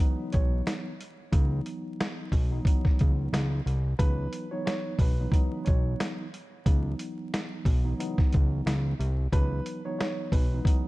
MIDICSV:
0, 0, Header, 1, 5, 480
1, 0, Start_track
1, 0, Key_signature, 4, "minor"
1, 0, Tempo, 666667
1, 955, Time_signature, 4, 2, 24, 8
1, 7832, End_track
2, 0, Start_track
2, 0, Title_t, "Upright piano"
2, 0, Program_c, 0, 0
2, 0, Note_on_c, 0, 71, 78
2, 205, Note_off_c, 0, 71, 0
2, 234, Note_on_c, 0, 73, 77
2, 925, Note_off_c, 0, 73, 0
2, 2872, Note_on_c, 0, 71, 116
2, 3225, Note_off_c, 0, 71, 0
2, 3248, Note_on_c, 0, 73, 77
2, 3340, Note_off_c, 0, 73, 0
2, 3351, Note_on_c, 0, 73, 86
2, 3568, Note_off_c, 0, 73, 0
2, 3602, Note_on_c, 0, 71, 83
2, 4050, Note_off_c, 0, 71, 0
2, 4065, Note_on_c, 0, 73, 75
2, 4761, Note_off_c, 0, 73, 0
2, 6717, Note_on_c, 0, 71, 111
2, 7068, Note_off_c, 0, 71, 0
2, 7092, Note_on_c, 0, 73, 80
2, 7177, Note_off_c, 0, 73, 0
2, 7188, Note_on_c, 0, 73, 85
2, 7407, Note_off_c, 0, 73, 0
2, 7431, Note_on_c, 0, 71, 77
2, 7832, Note_off_c, 0, 71, 0
2, 7832, End_track
3, 0, Start_track
3, 0, Title_t, "Tine electric piano"
3, 0, Program_c, 1, 4
3, 0, Note_on_c, 1, 37, 91
3, 0, Note_on_c, 1, 52, 81
3, 0, Note_on_c, 1, 54, 86
3, 0, Note_on_c, 1, 59, 84
3, 0, Note_on_c, 1, 63, 109
3, 657, Note_off_c, 1, 37, 0
3, 658, Note_off_c, 1, 52, 0
3, 658, Note_off_c, 1, 54, 0
3, 659, Note_off_c, 1, 59, 0
3, 660, Note_off_c, 1, 63, 0
3, 946, Note_on_c, 1, 37, 94
3, 947, Note_on_c, 1, 52, 87
3, 949, Note_on_c, 1, 54, 89
3, 950, Note_on_c, 1, 59, 87
3, 952, Note_on_c, 1, 63, 109
3, 1730, Note_off_c, 1, 37, 0
3, 1730, Note_off_c, 1, 52, 0
3, 1731, Note_off_c, 1, 54, 0
3, 1731, Note_off_c, 1, 59, 0
3, 1732, Note_off_c, 1, 63, 0
3, 1805, Note_on_c, 1, 37, 93
3, 1807, Note_on_c, 1, 52, 81
3, 1808, Note_on_c, 1, 54, 87
3, 1810, Note_on_c, 1, 59, 88
3, 1811, Note_on_c, 1, 63, 106
3, 1906, Note_off_c, 1, 37, 0
3, 1907, Note_off_c, 1, 52, 0
3, 1908, Note_off_c, 1, 54, 0
3, 1910, Note_off_c, 1, 59, 0
3, 1911, Note_off_c, 1, 63, 0
3, 1914, Note_on_c, 1, 37, 92
3, 1916, Note_on_c, 1, 52, 82
3, 1917, Note_on_c, 1, 54, 85
3, 1918, Note_on_c, 1, 59, 88
3, 1920, Note_on_c, 1, 63, 96
3, 2584, Note_off_c, 1, 37, 0
3, 2585, Note_off_c, 1, 52, 0
3, 2585, Note_off_c, 1, 54, 0
3, 2586, Note_off_c, 1, 59, 0
3, 2587, Note_off_c, 1, 63, 0
3, 2868, Note_on_c, 1, 37, 89
3, 2869, Note_on_c, 1, 52, 84
3, 2871, Note_on_c, 1, 54, 94
3, 2872, Note_on_c, 1, 59, 88
3, 2873, Note_on_c, 1, 63, 107
3, 3213, Note_off_c, 1, 37, 0
3, 3214, Note_off_c, 1, 52, 0
3, 3215, Note_off_c, 1, 54, 0
3, 3216, Note_off_c, 1, 59, 0
3, 3216, Note_off_c, 1, 63, 0
3, 3252, Note_on_c, 1, 37, 86
3, 3254, Note_on_c, 1, 52, 78
3, 3255, Note_on_c, 1, 54, 87
3, 3257, Note_on_c, 1, 59, 88
3, 3258, Note_on_c, 1, 63, 108
3, 3688, Note_off_c, 1, 37, 0
3, 3688, Note_off_c, 1, 52, 0
3, 3689, Note_off_c, 1, 54, 0
3, 3690, Note_off_c, 1, 59, 0
3, 3691, Note_off_c, 1, 63, 0
3, 3741, Note_on_c, 1, 37, 92
3, 3743, Note_on_c, 1, 52, 91
3, 3744, Note_on_c, 1, 54, 86
3, 3745, Note_on_c, 1, 59, 84
3, 3746, Note_on_c, 1, 63, 98
3, 3812, Note_off_c, 1, 37, 0
3, 3814, Note_off_c, 1, 52, 0
3, 3815, Note_off_c, 1, 54, 0
3, 3817, Note_off_c, 1, 59, 0
3, 3819, Note_off_c, 1, 63, 0
3, 3821, Note_on_c, 1, 37, 89
3, 3823, Note_on_c, 1, 52, 85
3, 3824, Note_on_c, 1, 54, 85
3, 3826, Note_on_c, 1, 59, 88
3, 3827, Note_on_c, 1, 63, 110
3, 4497, Note_off_c, 1, 37, 0
3, 4498, Note_off_c, 1, 52, 0
3, 4499, Note_off_c, 1, 54, 0
3, 4500, Note_off_c, 1, 59, 0
3, 4500, Note_off_c, 1, 63, 0
3, 4785, Note_on_c, 1, 37, 96
3, 4787, Note_on_c, 1, 52, 84
3, 4789, Note_on_c, 1, 54, 90
3, 4790, Note_on_c, 1, 59, 84
3, 4792, Note_on_c, 1, 63, 107
3, 5569, Note_off_c, 1, 37, 0
3, 5570, Note_off_c, 1, 52, 0
3, 5571, Note_off_c, 1, 54, 0
3, 5572, Note_off_c, 1, 59, 0
3, 5572, Note_off_c, 1, 63, 0
3, 5644, Note_on_c, 1, 37, 90
3, 5646, Note_on_c, 1, 52, 82
3, 5647, Note_on_c, 1, 54, 89
3, 5648, Note_on_c, 1, 59, 87
3, 5650, Note_on_c, 1, 63, 106
3, 5745, Note_off_c, 1, 37, 0
3, 5746, Note_off_c, 1, 52, 0
3, 5748, Note_off_c, 1, 54, 0
3, 5749, Note_off_c, 1, 59, 0
3, 5750, Note_off_c, 1, 63, 0
3, 5753, Note_on_c, 1, 37, 95
3, 5755, Note_on_c, 1, 52, 87
3, 5757, Note_on_c, 1, 54, 85
3, 5758, Note_on_c, 1, 59, 89
3, 5759, Note_on_c, 1, 63, 101
3, 6423, Note_off_c, 1, 37, 0
3, 6424, Note_off_c, 1, 52, 0
3, 6425, Note_off_c, 1, 54, 0
3, 6426, Note_off_c, 1, 59, 0
3, 6426, Note_off_c, 1, 63, 0
3, 6708, Note_on_c, 1, 37, 92
3, 6709, Note_on_c, 1, 52, 84
3, 6711, Note_on_c, 1, 54, 96
3, 6712, Note_on_c, 1, 59, 85
3, 6713, Note_on_c, 1, 63, 106
3, 7053, Note_off_c, 1, 37, 0
3, 7054, Note_off_c, 1, 52, 0
3, 7055, Note_off_c, 1, 54, 0
3, 7056, Note_off_c, 1, 59, 0
3, 7056, Note_off_c, 1, 63, 0
3, 7090, Note_on_c, 1, 37, 85
3, 7092, Note_on_c, 1, 52, 82
3, 7093, Note_on_c, 1, 54, 84
3, 7095, Note_on_c, 1, 59, 91
3, 7096, Note_on_c, 1, 63, 110
3, 7527, Note_off_c, 1, 37, 0
3, 7527, Note_off_c, 1, 52, 0
3, 7528, Note_off_c, 1, 54, 0
3, 7529, Note_off_c, 1, 59, 0
3, 7530, Note_off_c, 1, 63, 0
3, 7578, Note_on_c, 1, 37, 91
3, 7580, Note_on_c, 1, 52, 89
3, 7581, Note_on_c, 1, 54, 86
3, 7583, Note_on_c, 1, 59, 89
3, 7584, Note_on_c, 1, 63, 102
3, 7652, Note_off_c, 1, 37, 0
3, 7653, Note_off_c, 1, 52, 0
3, 7656, Note_off_c, 1, 54, 0
3, 7657, Note_off_c, 1, 59, 0
3, 7658, Note_off_c, 1, 63, 0
3, 7660, Note_on_c, 1, 37, 91
3, 7662, Note_on_c, 1, 52, 83
3, 7664, Note_on_c, 1, 54, 86
3, 7665, Note_on_c, 1, 59, 86
3, 7666, Note_on_c, 1, 63, 109
3, 7832, Note_off_c, 1, 37, 0
3, 7832, Note_off_c, 1, 52, 0
3, 7832, Note_off_c, 1, 54, 0
3, 7832, Note_off_c, 1, 59, 0
3, 7832, Note_off_c, 1, 63, 0
3, 7832, End_track
4, 0, Start_track
4, 0, Title_t, "Analog synth bass"
4, 0, Program_c, 2, 38
4, 246, Note_on_c, 2, 35, 95
4, 445, Note_off_c, 2, 35, 0
4, 955, Note_on_c, 2, 37, 107
4, 1158, Note_off_c, 2, 37, 0
4, 1671, Note_on_c, 2, 35, 97
4, 1876, Note_off_c, 2, 35, 0
4, 2051, Note_on_c, 2, 37, 52
4, 2093, Note_off_c, 2, 37, 0
4, 2167, Note_on_c, 2, 37, 93
4, 2365, Note_off_c, 2, 37, 0
4, 2395, Note_on_c, 2, 37, 106
4, 2598, Note_off_c, 2, 37, 0
4, 2635, Note_on_c, 2, 36, 96
4, 2839, Note_off_c, 2, 36, 0
4, 2876, Note_on_c, 2, 37, 106
4, 3079, Note_off_c, 2, 37, 0
4, 3591, Note_on_c, 2, 35, 87
4, 3796, Note_off_c, 2, 35, 0
4, 4087, Note_on_c, 2, 35, 93
4, 4285, Note_off_c, 2, 35, 0
4, 4796, Note_on_c, 2, 37, 112
4, 4999, Note_off_c, 2, 37, 0
4, 5511, Note_on_c, 2, 35, 94
4, 5716, Note_off_c, 2, 35, 0
4, 5891, Note_on_c, 2, 37, 52
4, 5933, Note_off_c, 2, 37, 0
4, 6006, Note_on_c, 2, 37, 94
4, 6205, Note_off_c, 2, 37, 0
4, 6236, Note_on_c, 2, 37, 103
4, 6439, Note_off_c, 2, 37, 0
4, 6476, Note_on_c, 2, 36, 97
4, 6679, Note_off_c, 2, 36, 0
4, 6715, Note_on_c, 2, 37, 112
4, 6919, Note_off_c, 2, 37, 0
4, 7431, Note_on_c, 2, 35, 89
4, 7636, Note_off_c, 2, 35, 0
4, 7832, End_track
5, 0, Start_track
5, 0, Title_t, "Drums"
5, 2, Note_on_c, 9, 42, 112
5, 74, Note_off_c, 9, 42, 0
5, 234, Note_on_c, 9, 42, 77
5, 245, Note_on_c, 9, 36, 94
5, 306, Note_off_c, 9, 42, 0
5, 317, Note_off_c, 9, 36, 0
5, 482, Note_on_c, 9, 40, 98
5, 483, Note_on_c, 9, 38, 118
5, 485, Note_on_c, 9, 42, 107
5, 554, Note_off_c, 9, 40, 0
5, 555, Note_off_c, 9, 38, 0
5, 557, Note_off_c, 9, 42, 0
5, 724, Note_on_c, 9, 42, 80
5, 796, Note_off_c, 9, 42, 0
5, 954, Note_on_c, 9, 36, 110
5, 956, Note_on_c, 9, 42, 99
5, 1026, Note_off_c, 9, 36, 0
5, 1028, Note_off_c, 9, 42, 0
5, 1195, Note_on_c, 9, 42, 82
5, 1267, Note_off_c, 9, 42, 0
5, 1444, Note_on_c, 9, 40, 96
5, 1444, Note_on_c, 9, 42, 84
5, 1445, Note_on_c, 9, 38, 120
5, 1516, Note_off_c, 9, 40, 0
5, 1516, Note_off_c, 9, 42, 0
5, 1517, Note_off_c, 9, 38, 0
5, 1670, Note_on_c, 9, 36, 89
5, 1676, Note_on_c, 9, 46, 59
5, 1742, Note_off_c, 9, 36, 0
5, 1748, Note_off_c, 9, 46, 0
5, 1908, Note_on_c, 9, 36, 105
5, 1922, Note_on_c, 9, 42, 113
5, 1980, Note_off_c, 9, 36, 0
5, 1994, Note_off_c, 9, 42, 0
5, 2051, Note_on_c, 9, 36, 92
5, 2054, Note_on_c, 9, 38, 37
5, 2123, Note_off_c, 9, 36, 0
5, 2126, Note_off_c, 9, 38, 0
5, 2154, Note_on_c, 9, 42, 74
5, 2166, Note_on_c, 9, 36, 96
5, 2226, Note_off_c, 9, 42, 0
5, 2238, Note_off_c, 9, 36, 0
5, 2402, Note_on_c, 9, 40, 94
5, 2404, Note_on_c, 9, 38, 119
5, 2406, Note_on_c, 9, 42, 106
5, 2474, Note_off_c, 9, 40, 0
5, 2476, Note_off_c, 9, 38, 0
5, 2478, Note_off_c, 9, 42, 0
5, 2644, Note_on_c, 9, 42, 77
5, 2716, Note_off_c, 9, 42, 0
5, 2875, Note_on_c, 9, 36, 110
5, 2877, Note_on_c, 9, 42, 100
5, 2947, Note_off_c, 9, 36, 0
5, 2949, Note_off_c, 9, 42, 0
5, 3115, Note_on_c, 9, 42, 83
5, 3187, Note_off_c, 9, 42, 0
5, 3363, Note_on_c, 9, 40, 98
5, 3363, Note_on_c, 9, 42, 86
5, 3364, Note_on_c, 9, 38, 119
5, 3435, Note_off_c, 9, 40, 0
5, 3435, Note_off_c, 9, 42, 0
5, 3436, Note_off_c, 9, 38, 0
5, 3590, Note_on_c, 9, 36, 96
5, 3595, Note_on_c, 9, 46, 62
5, 3662, Note_off_c, 9, 36, 0
5, 3667, Note_off_c, 9, 46, 0
5, 3828, Note_on_c, 9, 36, 102
5, 3842, Note_on_c, 9, 42, 112
5, 3900, Note_off_c, 9, 36, 0
5, 3914, Note_off_c, 9, 42, 0
5, 4074, Note_on_c, 9, 42, 73
5, 4086, Note_on_c, 9, 36, 98
5, 4146, Note_off_c, 9, 42, 0
5, 4158, Note_off_c, 9, 36, 0
5, 4322, Note_on_c, 9, 40, 95
5, 4323, Note_on_c, 9, 38, 119
5, 4325, Note_on_c, 9, 42, 108
5, 4394, Note_off_c, 9, 40, 0
5, 4395, Note_off_c, 9, 38, 0
5, 4397, Note_off_c, 9, 42, 0
5, 4564, Note_on_c, 9, 42, 79
5, 4636, Note_off_c, 9, 42, 0
5, 4795, Note_on_c, 9, 36, 104
5, 4797, Note_on_c, 9, 42, 103
5, 4867, Note_off_c, 9, 36, 0
5, 4869, Note_off_c, 9, 42, 0
5, 5035, Note_on_c, 9, 42, 81
5, 5107, Note_off_c, 9, 42, 0
5, 5283, Note_on_c, 9, 40, 92
5, 5283, Note_on_c, 9, 42, 85
5, 5284, Note_on_c, 9, 38, 119
5, 5355, Note_off_c, 9, 40, 0
5, 5355, Note_off_c, 9, 42, 0
5, 5356, Note_off_c, 9, 38, 0
5, 5510, Note_on_c, 9, 36, 89
5, 5515, Note_on_c, 9, 46, 62
5, 5582, Note_off_c, 9, 36, 0
5, 5587, Note_off_c, 9, 46, 0
5, 5762, Note_on_c, 9, 42, 111
5, 5834, Note_off_c, 9, 42, 0
5, 5891, Note_on_c, 9, 36, 90
5, 5894, Note_on_c, 9, 38, 37
5, 5963, Note_off_c, 9, 36, 0
5, 5966, Note_off_c, 9, 38, 0
5, 5994, Note_on_c, 9, 42, 76
5, 6005, Note_on_c, 9, 36, 92
5, 6066, Note_off_c, 9, 42, 0
5, 6077, Note_off_c, 9, 36, 0
5, 6242, Note_on_c, 9, 40, 96
5, 6243, Note_on_c, 9, 38, 117
5, 6245, Note_on_c, 9, 42, 110
5, 6314, Note_off_c, 9, 40, 0
5, 6315, Note_off_c, 9, 38, 0
5, 6317, Note_off_c, 9, 42, 0
5, 6484, Note_on_c, 9, 42, 81
5, 6556, Note_off_c, 9, 42, 0
5, 6715, Note_on_c, 9, 36, 107
5, 6717, Note_on_c, 9, 42, 96
5, 6787, Note_off_c, 9, 36, 0
5, 6789, Note_off_c, 9, 42, 0
5, 6955, Note_on_c, 9, 42, 81
5, 7027, Note_off_c, 9, 42, 0
5, 7203, Note_on_c, 9, 42, 83
5, 7204, Note_on_c, 9, 40, 96
5, 7205, Note_on_c, 9, 38, 122
5, 7275, Note_off_c, 9, 42, 0
5, 7276, Note_off_c, 9, 40, 0
5, 7277, Note_off_c, 9, 38, 0
5, 7430, Note_on_c, 9, 36, 94
5, 7436, Note_on_c, 9, 46, 62
5, 7502, Note_off_c, 9, 36, 0
5, 7508, Note_off_c, 9, 46, 0
5, 7668, Note_on_c, 9, 36, 104
5, 7682, Note_on_c, 9, 42, 109
5, 7740, Note_off_c, 9, 36, 0
5, 7754, Note_off_c, 9, 42, 0
5, 7832, End_track
0, 0, End_of_file